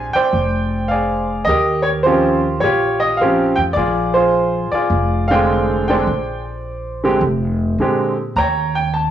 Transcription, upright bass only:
Already playing: A#1
0.15 muted upright bass stroke
0.33 F1
1.47 D#2
2.62 A#1
3.58 F2
3.76 A#1
4.72 muted upright bass stroke
4.90 F1
6.07 A#1
7.21 F1
8.36 D#2

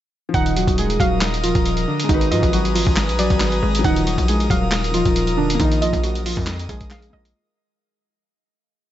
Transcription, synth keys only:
0.34 D#3 D#4
0.57 F#3 F#4
0.79 G#3 G#4
1.00 F#3 F#4
1.43 F3 F4
1.88 D3 D4
2.09 D#3 D#4
2.31 F3 F4
2.53 F#3 F#4
2.75 F3 F4
3.19 F#3 F#4
3.62 G#3 G#4
3.85 D#3 D#4
4.06 F#3 F#4
4.28 G#3 G#4
4.50 F#3 F#4
4.94 F3 F4
5.37 D3 D4
5.60 D#3 D#4
5.82 F3 F4
6.04 F#3 F#4
6.26 F3 F4
6.69 G#3 G#4

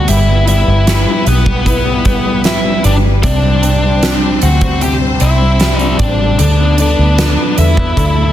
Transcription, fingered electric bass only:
0.08 G1
0.68 G1
1.27 B1
2.85 G1
3.24 C2
4.43 D2
5.21 C2
6.00 A1
6.39 D2
6.99 D2
7.58 E2
7.97 D2

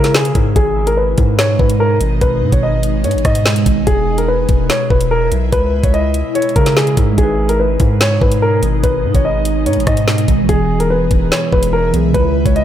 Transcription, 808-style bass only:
Already playing: C#3
0.35 G#2
0.56 G#1
1.18 G#2
1.59 G#2
2.01 G#1
2.21 G#1
2.42 G#2
2.52 G#1
3.04 G#2
3.15 G#1
3.25 G#2
3.66 G#1
3.87 E1
4.49 E1
4.90 E1
5.32 B1
5.53 C#2
5.84 C#2
6.56 C#3
6.97 G#2
7.18 G#1
7.80 G#2
8.21 G#2
8.63 G#1
8.84 G#1
9.04 G#2
9.15 G#1
9.66 G#2
9.77 G#1
9.87 G#2
10.28 G#1
10.49 E1
11.11 E1
11.53 E1
11.94 B1
12.15 C#2
12.46 C#2

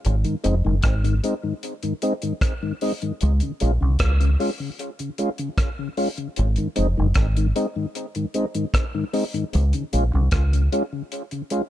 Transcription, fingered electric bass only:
0.06 G#1
0.45 F1
0.66 F#1
0.84 G#1
3.23 C#2
3.62 A#1
3.82 C2
4.01 C#2
6.39 G#1
6.78 F1
6.99 F#1
7.16 G#1
9.55 C#2
9.94 A#1
10.15 C2
10.33 C#2

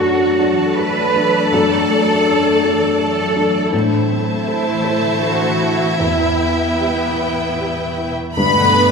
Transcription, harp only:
Already playing: F#2 D4
0.00 A3
0.26 F#3
0.51 E3
0.76 A3
1.01 F#3
1.26 D4
1.51 F#2
1.76 A3
1.99 D4
2.24 A3
2.49 F#3
2.73 E3
2.98 A3
3.24 F#3
3.49 D4
3.73 A2
3.99 A3
4.24 C4
4.49 A3
4.72 E3
4.98 D3
5.23 A3
5.49 E3
5.75 C4
6.01 E2
6.27 G3
6.80 G3
7.07 B2
7.33 A2
7.59 G3
7.85 B2
8.11 B2
8.37 G2
8.56 D3
8.75 G3

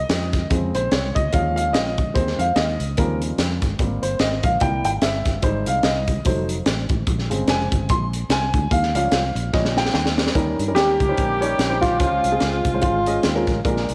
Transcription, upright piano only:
Already playing: D#5
0.50 C#3 G#3 C4
0.75 C5
0.92 C#5
1.15 D#5
1.32 F3 G#3 C#4 F5
1.56 F5
1.73 D#5
2.14 D#3 G#3 C4 C5
2.39 F5
2.56 D#5
2.98 C#3 F3 G3 C4 A#4
3.79 G3 A#3 C4
4.03 C5
4.20 D#5
4.44 F5
4.61 G3 A#3 E4 G5
4.85 G5
5.02 E5
5.42 G3 G#3 D#4 C5
5.67 F5
5.84 D#5
6.25 F#3 A3 D#4 C5
7.30 C#3 G#3 C4
7.49 G#5
7.90 C6
8.32 G#5
8.71 F5
8.94 F3 G3 C#4 F5
9.53 F3 G3 C#4 D#5
9.78 G5
9.94 G5
10.35 D#3 G3 C#4 D#4 A#4
10.68 G3 C#4 D#4 A#4
11.09 G3 C#4 D#4 C5
11.41 G3 C#4 D#4 C#5
11.70 G3 C#4 D#4 C5
12.00 C#3 G#3 C#4 F4 C5
12.32 G#3 C4 F4 G#4
12.74 G#3 C#4 F4 C5
13.07 G#3 C#4 F4 D#5
13.35 G#3 C#4 F4 A#4
13.65 A#2 G#3 D4 F4 A#4

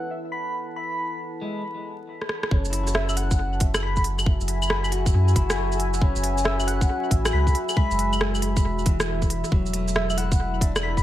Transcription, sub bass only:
2.51 F#1
4.41 F#1
5.14 F#2
5.36 F#1
6.15 F#1
7.11 A1
7.33 C#2
7.91 F#1
8.64 E1
9.52 E1

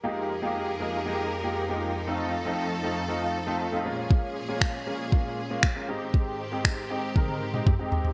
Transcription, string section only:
0.04 F2 F3 D#4 G4 G#4 A#4
2.07 A4
3.85 A#2 C#4 G#4
5.89 G#2 D#3 C4 G4

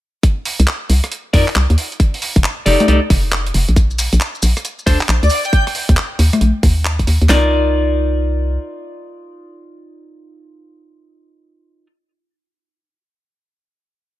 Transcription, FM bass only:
0.60 C2
0.90 C2
1.34 F2
1.56 C2
1.70 D#2
2.36 F1
2.66 F1
2.88 C2
3.10 F1
3.54 F1
3.69 A#1
4.13 A#1
4.43 A#1
4.87 D2
5.09 A#1
5.23 D2
5.89 D#2
6.19 D#2
6.41 A#1
6.63 D#2
7.07 D#2
7.22 D#2
7.29 C2

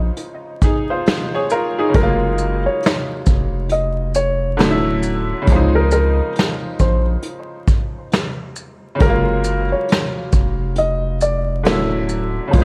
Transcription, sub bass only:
Already playing: A#1
1.95 F#1
3.27 F1
4.60 D1
5.48 C#2
6.80 A#1
9.01 F#1
10.33 F1
11.67 D1
12.54 C#2

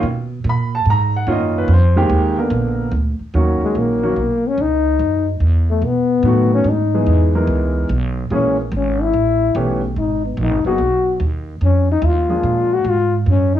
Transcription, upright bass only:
0.03 B2
0.44 A#2
0.86 G#2
1.27 F#2
1.68 F2
2.09 D#2
2.50 A#1
2.92 D2
3.19 muted upright bass stroke
3.34 D#2
3.61 muted upright bass stroke
3.75 A#1
4.16 B1
4.58 C#2
4.99 F#2
5.40 E2
5.82 B2
6.23 A2
6.64 G#2
7.07 E2
7.47 C#2
7.89 B1
8.30 A#1
8.72 G#1
9.14 A1
9.55 B1
9.96 G#1
10.37 A#1
10.51 G#1
10.65 F#1
10.78 B1
11.20 D#2
11.61 F2
12.02 D#2
12.43 A#2
12.84 G#2
13.26 F#2

